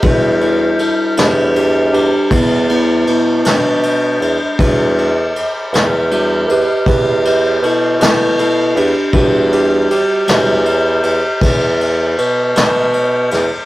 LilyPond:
<<
  \new Staff \with { instrumentName = "Tine electric piano" } { \time 12/8 \key e \minor \tempo 4. = 53 << { <e' gis' a'>8 <e' a'>8 <e' a'>8 <d' g'>8 <d' g'>8 <d' g'>8 <b e'>8 <b e'>8 <b e'>8 d'4.~ | d'8 r2 <g' ais' b'>8 <g' b'>8 <g' b'>8 <e' a'>8 <e' a'>8 <e' a'>8 <d' g'>8 | g'8 <d' g'>8 g'2 r2. | } \\ { <g d' fis'>1. | <g d' fis'>8 r4. <g d' fis'>8 r2. r8 | <g d' fis'>4. <g d' fis'>8 r1 | } >> }
  \new Staff \with { instrumentName = "Bassoon" } { \clef bass \time 12/8 \key e \minor e,4 r8 e,4 e,16 r16 e,4 b,8 b,4 e,16 r16 | e,4 r8 e,4 e,16 r16 e,4 b,8 b,4 e,16 r16 | e,4 r8 e,4 e,16 r16 e,4 b,8 b,4 e,16 r16 | }
  \new DrumStaff \with { instrumentName = "Drums" } \drummode { \time 12/8 <bd cymr>8 cymr8 cymr8 <cymr sn>8 cymr8 cymr8 <bd cymr>8 cymr8 cymr8 <cymr sn>8 cymr8 cymr8 | <bd cymr>8 cymr8 cymr8 <cymr sn>8 cymr8 cymr8 <bd cymr>8 cymr8 cymr8 <cymr sn>8 cymr8 cymr8 | <bd cymr>8 cymr8 cymr8 <cymr sn>8 cymr8 cymr8 <bd cymr sn>8 cymr8 cymr8 <cymr sn>8 cymr8 <cymr sn>8 | }
>>